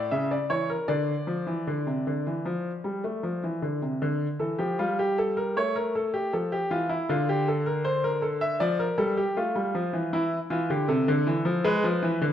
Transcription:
0.11 C#3 E5
0.31 D5
0.50 E3 C#5
0.70 A#4
0.88 D3 D5
1.27 F3
1.47 E3
1.67 D3
1.86 C3
2.07 D3
2.27 E3
2.45 F3
2.84 G3
3.04 A3
3.23 F3
3.44 E3
3.62 D3
3.82 C3
4.02 D3
4.39 E3 A4
4.59 F3 G4
4.79 G3 F4
4.99 G4
5.18 A4
5.37 A#4
5.57 A3 C#5
5.76 A#4
5.95 A4
6.14 G4
6.33 F3 A4
6.52 G4
6.71 E3 F4
6.89 E4
7.09 D3 F4
7.29 G4
7.48 A4
7.66 A#4
7.85 C5
8.04 A#4
8.22 A4
8.41 E5
8.60 F3 D5
8.79 A#4
8.98 G3 A4
9.17 G4
9.37 A3 F4
9.55 G3
9.74 F3
9.93 E3
10.13 E3 E4
10.50 E3 F4
10.70 D3 G4
10.88 C3 A4
11.08 D3
11.27 E3
11.45 F3
11.64 G#3 B4
11.84 F3
12.02 E3
12.21 D3

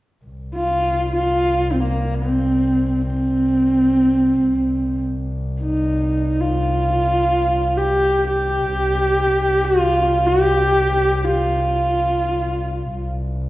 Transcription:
0.25 C2
0.55 F4
1.15 F4
1.72 C4
1.80 A#3
2.14 C4
3.06 C4
4.47 C2
5.62 D#4
6.40 F4
7.77 G4
8.27 G4
8.70 C2
9.64 F4
10.26 G4
11.24 F4
12.93 C2

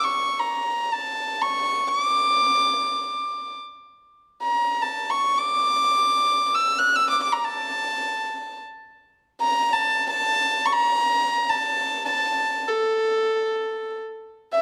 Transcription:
0.04 C#6
0.39 A#5
0.93 A5
1.42 C#6
1.88 C#6
2.00 D6
4.43 A#5
4.82 A5
5.10 C#6
5.38 D6
6.55 E6
6.79 F#6
6.96 E6
7.10 D6
7.23 D6
7.32 A#5
7.45 A5
9.42 A#5
9.73 A5
10.10 A5
10.66 C#6
10.73 A#5
11.50 A5
12.06 A5
12.68 A4
14.53 E5

